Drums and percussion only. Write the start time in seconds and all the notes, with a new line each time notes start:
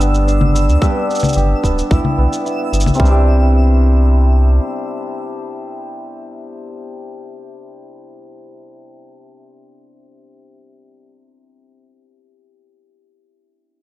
0.01 shaker
0.14 shaker
0.28 shaker
0.41 low conga
0.55 shaker
0.69 shaker
0.82 kick, shaker
1.10 shaker
1.15 shaker
1.19 low conga, shaker
1.24 shaker
1.28 shaker
1.33 shaker
1.37 shaker
1.64 kick, shaker
1.78 shaker
1.91 kick, shaker
2.05 low conga
2.33 shaker
2.46 shaker
2.73 shaker
2.80 shaker
2.86 low conga, shaker
2.94 shaker
2.96 kick, shaker
3.05 shaker